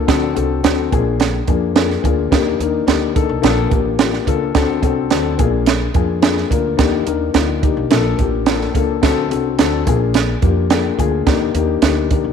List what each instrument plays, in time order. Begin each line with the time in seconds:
0.07 upright bass D2, upright piano C4 D4 F#4 A4, kick, snare, closed hi-hat
0.35 upright bass C2, upright piano C4 D4 F#4 A4, closed hi-hat
0.64 upright bass D2, upright piano C4 D4 F#4 A4, snare, closed hi-hat
0.91 upright bass A#1, upright piano A#3 C4 F4 G#4, kick, closed hi-hat
0.98 upright piano D4
1.20 snare, closed hi-hat
1.48 upright bass F2, upright piano A#3 D4 F4 G#4, kick, closed hi-hat
1.75 upright piano A#3 D4 F4 G#4, snare, closed hi-hat
1.90 snare
2.04 upright bass D2, upright piano A#3 D4 F4 G#4, kick, closed hi-hat
2.31 upright bass D#2, upright piano A#3 D4 D#4 G4, kick, snare, closed hi-hat
2.59 upright bass D#2, upright piano A#3 D4 D#4 A#4, closed hi-hat
2.86 upright bass D2, upright piano A#3 D4 D#4 G4, snare, closed hi-hat
3.14 upright piano A#3 D4 D#4 A4, kick, closed hi-hat
3.29 upright bass C2
3.42 upright bass A#1, upright piano A#3 D4 F4 A4, snare, closed hi-hat
3.70 upright bass A1, upright piano A#3 D4 F4 G4, kick, closed hi-hat
3.98 upright piano A#3 D4 F4 G4, snare, closed hi-hat
4.13 snare
4.26 upright bass C#2, upright piano A#3 D4 F4 A4, kick, closed hi-hat
4.54 upright bass D2, upright piano C4 D4 F#4 A4, kick, snare, closed hi-hat
4.82 upright bass C2, upright piano C4 D4 F#4 A4, kick, closed hi-hat
5.10 upright bass D2, upright piano C4 D4 F#4 A4, snare, closed hi-hat
5.38 upright bass A#1, upright piano A#3 C4 F4 G#4, kick, closed hi-hat
5.45 upright piano D4
5.66 snare, closed hi-hat
5.94 upright bass F2, upright piano A#3 D4 F4 G#4, kick, closed hi-hat
6.22 upright piano A#3 D4 F4 G#4, snare, closed hi-hat
6.37 snare
6.50 upright bass D2, upright piano A#3 D4 F4 A#4, kick, closed hi-hat
6.77 upright bass D#2, upright piano A#3 D4 D#4 G4, kick, snare, closed hi-hat
7.05 upright bass D#2, upright piano A#3 D4 D#4 A#4, closed hi-hat
7.34 upright bass D2, upright piano A#3 D4 D#4 F4, snare, closed hi-hat
7.62 upright piano A#3 D4 D#4 G4, kick, closed hi-hat
7.77 upright bass C2
7.90 upright bass A#1, upright piano A#3 D4 F4 A4, snare, closed hi-hat
8.18 upright bass A1, upright piano A#3 D4 F4 G4, kick, closed hi-hat
8.46 upright piano A#3 D4 F4 A4, snare, closed hi-hat
8.61 snare
8.74 upright bass C#2, upright piano A#3 D4 F4 A4, kick, closed hi-hat
9.02 upright bass D2, upright piano C4 D4 F#4 A4, kick, snare, closed hi-hat
9.30 upright bass C2, upright piano C4 D4 F#4 A4, closed hi-hat
9.58 upright bass D2, upright piano C4 D4 F#4 A4, snare, closed hi-hat
9.86 upright bass A#1, upright piano A#3 C4 F4 G#4, kick, closed hi-hat
9.94 upright piano D4
10.14 snare, closed hi-hat
10.42 upright bass F2, upright piano A#3 D4 F4 G4, kick, closed hi-hat
10.70 upright piano A#3 D4 F4 G#4, snare, closed hi-hat
10.98 upright bass D2, upright piano A#3 D4 F4 G#4, kick, closed hi-hat
11.26 upright bass D#2, upright piano A#3 D4 D#4 G4, kick, snare, closed hi-hat
11.54 upright bass D#2, upright piano A#3 D4 D#4 G4, closed hi-hat
11.82 upright bass D2, upright piano A#3 D4 D#4 G4, snare, closed hi-hat
12.11 upright piano A#3 D4 D#4 G4, kick, closed hi-hat
12.24 upright bass C2